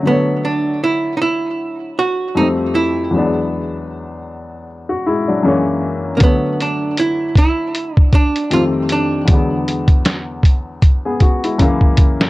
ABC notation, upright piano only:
X:1
M:4/4
L:1/16
Q:"Swing 16ths" 1/4=78
K:Dlyd
V:1 name="Upright piano"
z16 | z8 z F [G,E] [F,D]2 z3 | z16 | z8 z [B,G] F [G,E]2 z3 |]
V:2 name="Upright piano" clef=bass
[D,F,A,c]12 [=F,,=F,=G,A,=C]4 | [E,,F,G,B,D]12 [F,,E,G,^A,C]4 | [D,F,A,c]12 [=F,,_E,=G,A,=C]4 | [E,,D,F,G,B,]12 [F,,C,E,G,^A,]4 |]